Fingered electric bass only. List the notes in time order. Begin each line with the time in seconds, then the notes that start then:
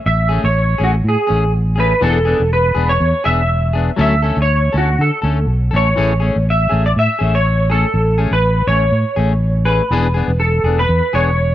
0.06 A1
0.44 A1
0.80 A1
1.04 A2
1.30 A1
2.02 E1
2.40 E1
2.76 E1
3.00 E2
3.26 E1
3.99 D2
4.37 D2
4.74 D2
4.99 D3
5.23 D2
5.47 B1
5.73 A1
5.98 A1
6.36 A1
6.72 A1
6.96 A2
7.21 A1
7.94 A1
8.31 A1
8.67 A1
8.92 A2
9.17 A1
9.91 E1
10.28 E1
10.64 E1
10.89 E2
11.14 E1